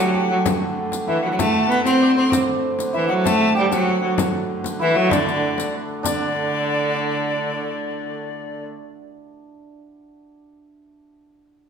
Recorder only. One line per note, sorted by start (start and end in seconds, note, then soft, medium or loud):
0.00 0.42 F#5 medium
1.08 1.24 E5 medium
1.23 1.31 F#5 medium
1.32 1.35 F#5 medium
1.39 1.72 A5 medium
1.71 1.85 B5 medium
1.85 2.15 C6 medium
2.15 2.31 C6 medium
2.93 3.07 E5 medium
3.08 3.14 F#5 medium
3.24 3.53 A5 medium
3.56 3.62 G5 medium
3.72 4.15 F#5 medium
4.81 5.14 E5 loud
5.13 5.73 D5 medium
6.05 8.64 D5 loud